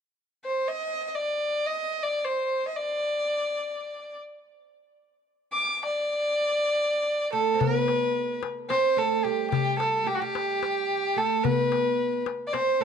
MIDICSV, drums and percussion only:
0, 0, Header, 1, 2, 480
1, 0, Start_track
1, 0, Tempo, 500000
1, 12326, End_track
2, 0, Start_track
2, 0, Title_t, "Darbuka"
2, 7304, Note_on_c, 9, 64, 88
2, 7400, Note_off_c, 9, 64, 0
2, 7565, Note_on_c, 9, 63, 55
2, 7661, Note_off_c, 9, 63, 0
2, 7830, Note_on_c, 9, 62, 20
2, 7926, Note_off_c, 9, 62, 0
2, 8090, Note_on_c, 9, 63, 64
2, 8186, Note_off_c, 9, 63, 0
2, 8355, Note_on_c, 9, 63, 59
2, 8451, Note_off_c, 9, 63, 0
2, 8618, Note_on_c, 9, 62, 20
2, 8714, Note_off_c, 9, 62, 0
2, 8881, Note_on_c, 9, 62, 24
2, 8977, Note_off_c, 9, 62, 0
2, 9143, Note_on_c, 9, 64, 76
2, 9239, Note_off_c, 9, 64, 0
2, 9408, Note_on_c, 9, 63, 59
2, 9504, Note_off_c, 9, 63, 0
2, 9677, Note_on_c, 9, 62, 21
2, 9773, Note_off_c, 9, 62, 0
2, 9938, Note_on_c, 9, 63, 62
2, 10034, Note_off_c, 9, 63, 0
2, 10202, Note_on_c, 9, 63, 57
2, 10298, Note_off_c, 9, 63, 0
2, 10467, Note_on_c, 9, 62, 22
2, 10563, Note_off_c, 9, 62, 0
2, 10730, Note_on_c, 9, 62, 23
2, 10826, Note_off_c, 9, 62, 0
2, 10988, Note_on_c, 9, 64, 79
2, 11084, Note_off_c, 9, 64, 0
2, 11251, Note_on_c, 9, 63, 57
2, 11347, Note_off_c, 9, 63, 0
2, 11521, Note_on_c, 9, 62, 23
2, 11617, Note_off_c, 9, 62, 0
2, 11773, Note_on_c, 9, 63, 58
2, 11869, Note_off_c, 9, 63, 0
2, 12035, Note_on_c, 9, 63, 62
2, 12131, Note_off_c, 9, 63, 0
2, 12326, End_track
0, 0, End_of_file